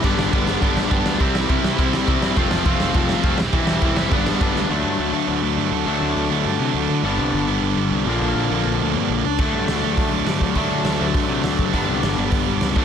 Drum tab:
CC |x-------|--------|--------|--------|
RD |--x-x-x-|x-x-x-x-|x-x-x-x-|x-x-x-x-|
HH |--------|--------|--------|--------|
SD |-o-o-o-o|-o-o-o-o|-o-o-o-o|-o-o-o-o|
BD |o-o-o-o-|o-o-o-o-|o-o-o-o-|o-o-o-o-|

CC |--------|--------|--------|--------|
RD |--------|--------|--------|--------|
HH |--------|--------|--------|--------|
SD |--------|--------|--------|--------|
BD |--------|--------|--------|--------|

CC |x-------|--------|--------|
RD |--------|--------|--------|
HH |--o-o-o-|o-o-o-o-|o-o-o-o-|
SD |--o---o-|--o---o-|--o---o-|
BD |o---o--o|o---o--o|o---o--o|